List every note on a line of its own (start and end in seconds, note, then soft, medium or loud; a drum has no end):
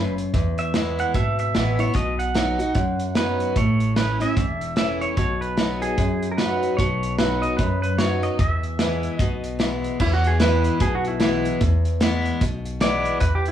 0.00 0.21 F#1 medium
0.00 0.32 F#2 medium
0.00 0.14 B4 medium
0.18 closed hi-hat medium
0.34 1.01 E2 medium
0.34 1.11 E2 medium
0.34 kick loud
0.34 closed hi-hat medium
0.58 0.99 E5 loud
0.58 closed hi-hat medium
0.74 1.13 E3 medium
0.74 1.13 G#3 medium
0.74 1.13 B3 medium
0.74 1.14 E4 medium
0.74 snare loud
0.74 closed hi-hat medium
0.99 1.15 F#5 loud
0.99 closed hi-hat medium
1.14 1.49 G#1 medium
1.14 1.92 B2 medium
1.14 1.39 E5 loud
1.14 kick loud
1.14 closed hi-hat medium
1.39 1.81 E5 loud
1.39 closed hi-hat medium
1.54 1.89 A1 medium
1.54 1.78 E3 medium
1.54 1.78 G#3 medium
1.54 1.79 B3 medium
1.54 1.78 E4 medium
1.54 snare loud
1.54 closed hi-hat medium
1.79 1.95 B3 soft
1.79 1.94 E4 medium
1.79 1.94 C#5 medium
1.79 closed hi-hat medium
1.94 2.62 B1 medium
1.94 2.72 B2 medium
1.94 2.18 D#5 medium
1.94 kick loud
1.94 closed hi-hat medium
2.19 3.19 F#5 medium
2.19 closed hi-hat medium
2.34 2.58 F#3 medium
2.34 2.58 B3 medium
2.34 2.59 D#4 medium
2.34 2.58 F#4 medium
2.34 snare loud
2.34 closed hi-hat medium
2.59 2.75 D#4 soft
2.59 2.75 F#4 medium
2.59 closed hi-hat medium
2.75 3.53 F#2 medium
2.75 3.43 F#2 medium
2.75 kick loud
2.75 closed hi-hat medium
3.00 closed hi-hat medium
3.15 3.54 F#3 soft
3.15 3.55 B3 medium
3.15 3.55 D#4 medium
3.15 3.55 F#4 medium
3.15 3.57 B4 medium
3.15 snare loud
3.15 closed hi-hat medium
3.40 closed hi-hat medium
3.56 4.24 A1 medium
3.56 4.34 A2 medium
3.56 3.96 C#5 medium
3.56 kick loud
3.56 closed hi-hat medium
3.80 closed hi-hat medium
3.96 4.20 E3 medium
3.96 4.20 A3 medium
3.96 4.21 C#4 medium
3.96 4.19 E4 medium
3.96 4.22 B4 medium
3.96 snare loud
3.96 closed hi-hat medium
4.20 4.37 C#4 soft
4.20 4.36 E4 medium
4.20 4.74 E5 medium
4.20 closed hi-hat medium
4.37 5.04 E1 medium
4.37 5.14 E2 medium
4.37 kick loud
4.37 closed hi-hat medium
4.61 closed hi-hat medium
4.76 5.15 E3 medium
4.76 5.15 A3 medium
4.76 5.16 C#4 medium
4.76 5.16 E4 medium
4.76 5.02 E5 medium
4.76 snare loud
4.76 closed hi-hat medium
5.02 5.17 C#5 medium
5.02 closed hi-hat soft
5.17 5.85 B1 medium
5.17 5.95 B2 medium
5.17 5.40 C#5 medium
5.17 kick loud
5.17 closed hi-hat medium
5.41 5.79 B4 medium
5.41 closed hi-hat medium
5.57 5.96 F#3 medium
5.57 5.96 B3 medium
5.57 5.97 D#4 medium
5.57 5.97 F#4 medium
5.57 snare loud
5.57 closed hi-hat medium
5.82 6.31 G#4 medium
5.82 closed hi-hat medium
5.98 6.75 F#2 medium
5.98 6.65 F#2 medium
5.98 kick loud
5.98 closed hi-hat medium
6.22 closed hi-hat medium
6.32 6.38 A#4 medium
6.38 6.77 F#3 medium
6.38 6.77 B3 medium
6.38 6.77 D#4 medium
6.38 6.77 F#4 medium
6.38 6.76 B4 medium
6.38 snare loud
6.38 closed hi-hat medium
6.63 closed hi-hat medium
6.77 7.46 B1 medium
6.77 7.56 B2 medium
6.77 7.18 C#5 medium
6.77 kick loud
6.77 closed hi-hat medium
7.03 closed hi-hat medium
7.19 7.57 F#3 soft
7.19 7.57 B3 medium
7.19 7.58 D#4 medium
7.19 7.58 F#4 medium
7.19 7.44 B4 medium
7.19 snare loud
7.19 closed hi-hat medium
7.42 7.59 D#5 medium
7.42 closed hi-hat medium
7.57 8.36 F#2 medium
7.57 8.26 F#2 medium
7.57 7.81 B4 medium
7.57 kick loud
7.57 closed hi-hat medium
7.82 7.99 B4 medium
7.82 closed hi-hat medium
7.98 8.38 F#3 medium
7.98 8.38 B3 medium
7.98 8.39 D#4 medium
7.98 8.39 F#4 medium
7.98 8.21 C#5 medium
7.98 snare loud
7.98 closed hi-hat medium
8.23 8.40 D#5 medium
8.23 closed hi-hat medium
8.39 9.16 E2 medium
8.39 9.06 E2 medium
8.39 9.17 E5 medium
8.39 kick loud
8.39 closed hi-hat medium
8.63 closed hi-hat soft
8.79 9.18 E3 medium
8.79 9.18 G#3 medium
8.79 9.18 B3 medium
8.79 9.19 E4 medium
8.79 snare loud
8.79 closed hi-hat medium
9.03 closed hi-hat medium
9.17 9.87 B1 medium
9.17 9.97 B2 medium
9.17 9.57 D#5 medium
9.17 kick loud
9.17 closed hi-hat medium
9.44 closed hi-hat medium
9.59 9.98 E3 medium
9.59 9.99 G#3 medium
9.59 9.99 B3 medium
9.59 9.99 E4 medium
9.59 snare loud
9.59 closed hi-hat medium
9.84 closed hi-hat medium
10.00 10.77 E2 medium
10.00 10.67 E2 medium
10.00 10.13 E4 medium
10.00 kick loud
10.00 crash medium
10.14 10.26 F#4 medium
10.24 10.40 G#4 medium
10.24 closed hi-hat medium
10.40 10.79 E3 medium
10.40 10.79 G#3 medium
10.40 10.79 B3 medium
10.40 10.79 E4 medium
10.40 10.80 B4 loud
10.40 snare loud
10.40 closed hi-hat medium
10.64 closed hi-hat medium
10.80 11.48 B1 medium
10.80 11.58 B2 medium
10.80 10.94 G#4 medium
10.80 kick loud
10.80 closed hi-hat medium
10.95 11.07 F#4 medium
11.04 11.46 E4 medium
11.04 closed hi-hat medium
11.20 11.59 E3 medium
11.20 11.59 G#3 medium
11.20 11.59 B3 medium
11.20 11.60 E4 medium
11.20 snare loud
11.20 closed hi-hat medium
11.45 closed hi-hat medium
11.61 12.38 E2 medium
11.61 12.28 E2 medium
11.61 kick loud
11.61 closed hi-hat medium
11.85 closed hi-hat medium
12.01 12.39 E3 medium
12.01 12.40 G#3 medium
12.01 12.40 B3 medium
12.01 12.40 E4 medium
12.01 snare loud
12.01 closed hi-hat medium
12.26 closed hi-hat medium
12.41 13.08 B1 medium
12.41 13.19 B2 medium
12.41 kick loud
12.41 closed hi-hat medium
12.65 closed hi-hat medium
12.80 13.20 E3 medium
12.80 13.20 G#3 medium
12.80 13.20 B3 medium
12.80 13.21 E4 loud
12.80 13.20 D5 medium
12.80 snare loud
12.80 closed hi-hat medium
13.05 closed hi-hat medium
13.20 13.52 E2 medium
13.20 13.34 B4 medium
13.20 kick loud
13.20 closed hi-hat medium
13.35 13.48 G4 medium
13.46 13.52 E4 medium
13.46 closed hi-hat medium